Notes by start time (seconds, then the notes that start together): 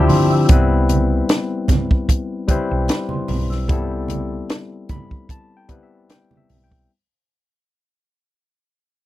Already playing: F3 C4 D4 E4 G4 E5 G5 E6
0.07 D3 C6, open hi-hat, muted conga, low conga
0.31 E6
0.48 C2 G3 B3 C4 E4 B4, kick, closed hi-hat, muted conga, low conga
0.89 closed hi-hat, high conga
1.29 snare, closed hi-hat, muted conga
1.68 kick, snare, closed hi-hat, muted conga, high conga, low conga
1.91 kick
2.09 kick, closed hi-hat
2.48 G3 C4 E4 B4 C5, muted fingered electric bass stroke, kick, closed hi-hat, muted conga, high conga
2.70 B1 G5
2.88 B5, snare, closed hi-hat, muted conga
3.09 C6, high conga
3.28 B1, open hi-hat, muted conga, low conga
3.50 E6, snare
3.68 C2 G3 B3 C4 E4 A4, kick, closed hi-hat, low conga
4.08 closed hi-hat, muted conga, high conga
4.50 snare, closed hi-hat, muted conga
4.89 B5, kick, closed hi-hat, muted conga, high conga, low conga
5.11 kick
5.29 A5, kick, closed hi-hat, muted conga
5.57 G5
5.68 G3 B3 C4 E4 B4, kick, closed hi-hat, high conga
5.83 E5
6.09 G5, snare, closed hi-hat, muted conga
6.31 high conga
6.37 E5
6.49 B1, open hi-hat, muted conga, low conga
6.64 G5
6.71 kick